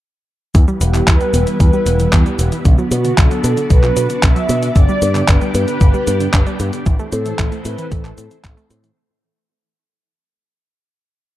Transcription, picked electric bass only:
0.55 0.65 E2 medium
0.81 1.00 E1 medium
1.07 1.17 E2 medium
1.33 1.43 E1 medium
1.60 1.70 E2 medium
1.86 2.06 E1 medium
2.13 2.22 E2 medium
2.39 2.49 E1 medium
2.65 2.75 B1 medium
2.91 3.11 B2 medium
3.18 3.28 B1 medium
3.44 3.54 B2 medium
3.70 3.90 B1 medium
3.97 4.06 B2 medium
4.23 4.33 B1 medium
4.49 4.69 B2 medium
4.76 4.86 G1 medium
5.02 5.21 G2 medium
5.28 5.38 G1 medium
5.54 5.64 G2 medium
5.81 5.91 G1 medium
6.07 6.27 G2 medium
6.34 6.43 G1 medium
6.60 6.70 G2 medium
6.86 6.96 A1 loud
7.12 7.32 A2 medium
7.39 7.49 A1 medium
7.65 7.75 A2 medium
7.92 8.11 A1 medium
8.18 8.28 A2 medium
8.44 8.54 A1 medium
8.70 8.90 A2 medium

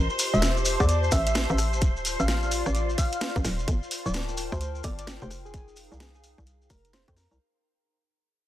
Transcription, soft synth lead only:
0.34 0.46 E5 medium
0.80 0.86 D5 medium
0.89 0.98 D5 medium
1.12 1.21 E5 medium
1.27 1.32 E5 medium
1.50 1.63 E5 loud
2.20 2.52 F5 loud
2.66 2.79 D5 loud
2.98 3.45 F5 loud
4.06 4.19 D5 medium
4.52 4.58 C5 medium
4.61 4.70 C5 medium
4.84 4.94 D5 medium
4.99 5.04 D5 medium
5.22 5.35 C5 medium
5.45 5.77 G#4 medium
6.00 6.10 G#4 medium
6.15 6.21 G#4 medium
6.70 6.87 A#4 medium
6.93 7.03 C5 medium
7.08 7.13 C5 medium
7.17 7.26 A#4 medium
7.31 7.37 A#4 medium

